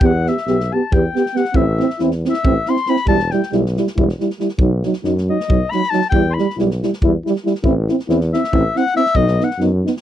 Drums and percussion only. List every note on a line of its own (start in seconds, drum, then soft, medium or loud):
0.01 kick loud
0.26 snare soft
0.37 snare soft
0.47 snare soft
0.60 snare soft
0.92 kick medium
1.16 snare soft
1.26 snare soft
1.36 snare soft
1.45 snare soft
1.54 kick medium
1.80 snare soft
1.90 snare soft
1.99 snare soft
2.11 snare soft
2.25 snare soft
2.34 snare soft
2.45 kick medium
2.66 snare soft
2.76 snare soft
2.86 snare soft
2.96 snare soft
3.07 kick medium
3.19 snare soft
3.31 snare soft
3.43 snare soft
3.52 snare soft
3.66 snare soft
3.77 snare soft
3.87 snare soft
3.98 kick medium
4.09 snare soft
4.20 snare soft
4.30 snare soft
4.40 snare soft
4.49 snare soft
4.59 kick medium
4.83 snare soft
4.93 snare soft
5.04 snare soft
5.18 snare soft
5.40 snare soft
5.50 kick medium
5.72 snare soft
5.83 snare soft
5.93 snare soft
6.01 snare soft
6.12 kick medium
6.38 snare soft
6.50 snare soft
6.59 snare soft
6.71 snare soft
6.83 snare soft
6.93 snare soft
7.02 kick medium
7.26 snare soft
7.36 snare soft
7.46 snare soft
7.55 snare soft
7.64 kick medium
7.89 snare soft
7.99 snare soft
8.09 snare soft
8.21 snare soft
8.34 snare soft
8.44 snare soft
8.53 kick medium
8.76 snare soft
8.86 snare soft
8.96 snare soft
9.06 snare soft
9.15 kick medium
9.27 snare soft
9.41 snare soft
9.51 snare soft
9.60 snare soft
9.87 snare soft
9.97 snare soft